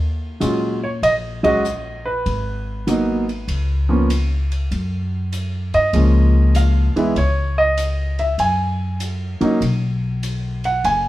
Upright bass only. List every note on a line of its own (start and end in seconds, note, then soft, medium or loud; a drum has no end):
0.00 0.38 D#2 medium
0.41 0.99 A#2 medium
1.02 2.22 A#1 medium
2.26 3.45 G#1 medium
3.48 4.67 C#2 medium
4.71 5.70 F#2 medium
5.74 5.93 G2 medium
5.93 6.92 C#2 medium
6.95 muted upright bass stroke soft
7.16 8.35 C#2 medium
8.38 9.37 F#2 medium
9.41 muted upright bass stroke soft
9.61 10.80 B1 medium
10.84 11.09 F#1 medium